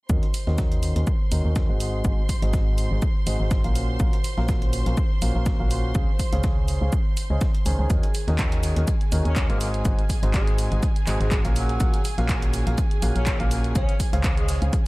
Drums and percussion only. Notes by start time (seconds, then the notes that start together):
0.10 kick, shaker
0.23 closed hi-hat
0.34 open hi-hat, shaker
0.47 snare
0.58 kick, snare, shaker
0.72 closed hi-hat
0.83 open hi-hat, shaker
0.96 closed hi-hat
1.07 kick, shaker
1.32 open hi-hat, shaker
1.56 kick, snare, shaker
1.80 open hi-hat, shaker
2.05 kick, shaker
2.29 kick, open hi-hat, shaker
2.42 closed hi-hat
2.53 kick, snare, shaker
2.78 open hi-hat, shaker
3.02 kick, shaker
3.27 open hi-hat, shaker
3.51 kick, snare, shaker
3.64 closed hi-hat
3.75 open hi-hat, shaker
4.00 kick, shaker
4.13 closed hi-hat
4.24 open hi-hat, shaker
4.38 snare
4.49 kick, snare, shaker
4.62 closed hi-hat
4.73 open hi-hat, shaker
4.86 closed hi-hat
4.97 kick, shaker
5.22 open hi-hat, shaker
5.46 kick, snare, shaker
5.71 open hi-hat, shaker
5.95 kick, shaker
6.19 kick, open hi-hat, shaker
6.33 closed hi-hat
6.44 kick, snare, shaker
6.68 open hi-hat, shaker
6.93 kick, shaker
7.17 open hi-hat, shaker
7.41 kick, snare, shaker
7.55 closed hi-hat
7.66 open hi-hat, shaker
7.90 kick, closed hi-hat, shaker
8.03 closed hi-hat
8.14 open hi-hat, shaker
8.28 snare, closed hi-hat
8.39 kick, snare, clap, closed hi-hat, shaker
8.52 closed hi-hat
8.63 open hi-hat, shaker
8.76 closed hi-hat
8.88 kick, closed hi-hat, shaker
9.01 closed hi-hat
9.12 open hi-hat, shaker
9.25 closed hi-hat
9.36 kick, snare, clap, closed hi-hat, shaker
9.50 closed hi-hat
9.61 open hi-hat, shaker
9.74 closed hi-hat
9.85 kick, closed hi-hat, shaker
9.99 closed hi-hat
10.10 kick, open hi-hat, shaker
10.23 closed hi-hat
10.34 kick, snare, clap, closed hi-hat, shaker
10.47 closed hi-hat
10.58 open hi-hat, shaker
10.72 closed hi-hat
10.83 kick, closed hi-hat, shaker
10.96 closed hi-hat
11.07 clap, open hi-hat, shaker
11.21 closed hi-hat
11.32 kick, snare, clap, closed hi-hat, shaker
11.45 closed hi-hat
11.56 open hi-hat, shaker
11.69 closed hi-hat
11.80 kick, closed hi-hat, shaker
11.94 closed hi-hat
12.05 open hi-hat, shaker
12.18 snare, closed hi-hat
12.29 kick, snare, clap, closed hi-hat, shaker
12.42 closed hi-hat
12.54 open hi-hat, shaker
12.67 closed hi-hat
12.78 kick, closed hi-hat, shaker
12.91 closed hi-hat
13.02 open hi-hat, shaker
13.16 closed hi-hat
13.27 kick, snare, clap, closed hi-hat, shaker
13.40 closed hi-hat
13.51 open hi-hat, shaker
13.64 closed hi-hat
13.75 kick, closed hi-hat, shaker
13.89 closed hi-hat
14.00 kick, open hi-hat, shaker
14.13 closed hi-hat
14.24 kick, snare, clap, closed hi-hat, shaker
14.37 closed hi-hat
14.49 snare, open hi-hat, shaker
14.62 closed hi-hat
14.73 kick, closed hi-hat, shaker